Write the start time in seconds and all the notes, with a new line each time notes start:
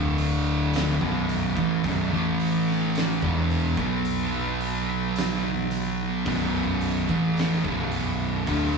Already playing: D1 D2 A2 D3
0.18 open hi-hat
0.73 snare, open hi-hat
1.01 B0 B1 F#2 B2, kick
1.29 open hi-hat
1.56 A1 A2 E3, kick
1.83 B0 B1 F#2, kick, open hi-hat
2.11 A1 A2 E3 A3
2.40 open hi-hat
2.71 snare
2.95 snare, open hi-hat
3.22 E1 E2 B2 E3, kick
3.50 open hi-hat
3.77 B1 B2 F#3 B3, kick
4.05 open hi-hat
4.60 open hi-hat
5.16 snare, open hi-hat
5.71 open hi-hat
6.26 B0 B1 F#2 B2, kick, open hi-hat
6.81 open hi-hat
7.09 A1 A2 E3 A3, kick
7.37 snare, open hi-hat
7.64 B0 B1 F#2 B2, kick
7.92 open hi-hat
8.47 D1 D2 A2 D3, kick, open hi-hat